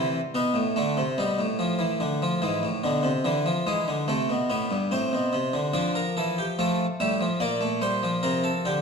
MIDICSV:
0, 0, Header, 1, 2, 480
1, 0, Start_track
1, 0, Key_signature, -1, "minor"
1, 0, Tempo, 831025
1, 1394, Time_signature, 4, 2, 24, 8
1, 5092, End_track
2, 0, Start_track
2, 0, Title_t, "Harpsichord"
2, 0, Program_c, 0, 6
2, 0, Note_on_c, 0, 48, 69
2, 0, Note_on_c, 0, 52, 80
2, 108, Note_off_c, 0, 48, 0
2, 111, Note_off_c, 0, 52, 0
2, 199, Note_on_c, 0, 47, 64
2, 202, Note_on_c, 0, 59, 81
2, 312, Note_on_c, 0, 45, 69
2, 316, Note_off_c, 0, 47, 0
2, 349, Note_off_c, 0, 59, 0
2, 432, Note_off_c, 0, 45, 0
2, 440, Note_on_c, 0, 57, 81
2, 446, Note_on_c, 0, 50, 63
2, 558, Note_off_c, 0, 50, 0
2, 562, Note_on_c, 0, 48, 66
2, 588, Note_off_c, 0, 57, 0
2, 676, Note_off_c, 0, 48, 0
2, 682, Note_on_c, 0, 55, 73
2, 683, Note_on_c, 0, 47, 65
2, 796, Note_off_c, 0, 47, 0
2, 801, Note_on_c, 0, 45, 63
2, 829, Note_off_c, 0, 55, 0
2, 918, Note_on_c, 0, 53, 77
2, 1033, Note_off_c, 0, 53, 0
2, 1033, Note_on_c, 0, 52, 77
2, 1150, Note_off_c, 0, 52, 0
2, 1157, Note_on_c, 0, 50, 78
2, 1272, Note_off_c, 0, 50, 0
2, 1284, Note_on_c, 0, 53, 79
2, 1378, Note_off_c, 0, 45, 0
2, 1395, Note_off_c, 0, 53, 0
2, 1397, Note_on_c, 0, 52, 78
2, 1398, Note_on_c, 0, 44, 63
2, 1512, Note_off_c, 0, 44, 0
2, 1520, Note_on_c, 0, 45, 58
2, 1544, Note_off_c, 0, 52, 0
2, 1632, Note_off_c, 0, 45, 0
2, 1638, Note_on_c, 0, 47, 67
2, 1639, Note_on_c, 0, 50, 83
2, 1751, Note_off_c, 0, 47, 0
2, 1751, Note_on_c, 0, 48, 70
2, 1786, Note_off_c, 0, 50, 0
2, 1868, Note_off_c, 0, 48, 0
2, 1874, Note_on_c, 0, 50, 68
2, 1878, Note_on_c, 0, 52, 82
2, 1990, Note_off_c, 0, 50, 0
2, 1998, Note_on_c, 0, 53, 70
2, 2025, Note_off_c, 0, 52, 0
2, 2112, Note_off_c, 0, 53, 0
2, 2118, Note_on_c, 0, 52, 67
2, 2118, Note_on_c, 0, 56, 74
2, 2232, Note_off_c, 0, 52, 0
2, 2241, Note_on_c, 0, 50, 61
2, 2266, Note_off_c, 0, 56, 0
2, 2354, Note_off_c, 0, 50, 0
2, 2357, Note_on_c, 0, 48, 59
2, 2357, Note_on_c, 0, 57, 79
2, 2473, Note_off_c, 0, 48, 0
2, 2480, Note_on_c, 0, 47, 62
2, 2506, Note_off_c, 0, 57, 0
2, 2595, Note_off_c, 0, 47, 0
2, 2597, Note_on_c, 0, 45, 60
2, 2599, Note_on_c, 0, 59, 71
2, 2714, Note_off_c, 0, 45, 0
2, 2719, Note_on_c, 0, 43, 58
2, 2747, Note_off_c, 0, 59, 0
2, 2834, Note_off_c, 0, 43, 0
2, 2838, Note_on_c, 0, 45, 66
2, 2841, Note_on_c, 0, 60, 77
2, 2954, Note_off_c, 0, 45, 0
2, 2964, Note_on_c, 0, 47, 59
2, 3077, Note_off_c, 0, 47, 0
2, 3078, Note_on_c, 0, 48, 66
2, 3194, Note_off_c, 0, 48, 0
2, 3197, Note_on_c, 0, 50, 66
2, 3306, Note_off_c, 0, 50, 0
2, 3306, Note_off_c, 0, 60, 0
2, 3313, Note_on_c, 0, 50, 62
2, 3313, Note_on_c, 0, 53, 64
2, 3313, Note_on_c, 0, 74, 81
2, 3434, Note_off_c, 0, 74, 0
2, 3439, Note_on_c, 0, 70, 66
2, 3465, Note_off_c, 0, 50, 0
2, 3557, Note_off_c, 0, 70, 0
2, 3563, Note_on_c, 0, 69, 68
2, 3567, Note_on_c, 0, 52, 63
2, 3680, Note_off_c, 0, 69, 0
2, 3687, Note_on_c, 0, 67, 69
2, 3716, Note_off_c, 0, 52, 0
2, 3786, Note_off_c, 0, 53, 0
2, 3802, Note_off_c, 0, 67, 0
2, 3805, Note_on_c, 0, 53, 68
2, 3806, Note_on_c, 0, 57, 61
2, 3806, Note_on_c, 0, 69, 71
2, 3954, Note_off_c, 0, 53, 0
2, 3954, Note_off_c, 0, 57, 0
2, 3954, Note_off_c, 0, 69, 0
2, 4045, Note_on_c, 0, 45, 60
2, 4045, Note_on_c, 0, 55, 54
2, 4045, Note_on_c, 0, 76, 73
2, 4161, Note_off_c, 0, 55, 0
2, 4163, Note_on_c, 0, 53, 53
2, 4193, Note_off_c, 0, 45, 0
2, 4193, Note_off_c, 0, 76, 0
2, 4275, Note_on_c, 0, 58, 59
2, 4277, Note_on_c, 0, 46, 65
2, 4277, Note_on_c, 0, 74, 80
2, 4279, Note_off_c, 0, 53, 0
2, 4394, Note_on_c, 0, 57, 53
2, 4395, Note_off_c, 0, 58, 0
2, 4427, Note_off_c, 0, 74, 0
2, 4514, Note_off_c, 0, 57, 0
2, 4514, Note_on_c, 0, 55, 56
2, 4516, Note_on_c, 0, 72, 82
2, 4634, Note_off_c, 0, 55, 0
2, 4638, Note_on_c, 0, 53, 64
2, 4666, Note_off_c, 0, 72, 0
2, 4744, Note_off_c, 0, 46, 0
2, 4753, Note_on_c, 0, 70, 76
2, 4756, Note_on_c, 0, 48, 62
2, 4873, Note_on_c, 0, 69, 80
2, 4874, Note_off_c, 0, 70, 0
2, 4907, Note_off_c, 0, 48, 0
2, 4994, Note_off_c, 0, 69, 0
2, 4998, Note_on_c, 0, 50, 64
2, 4999, Note_on_c, 0, 67, 73
2, 5092, Note_off_c, 0, 50, 0
2, 5092, Note_off_c, 0, 53, 0
2, 5092, Note_off_c, 0, 67, 0
2, 5092, End_track
0, 0, End_of_file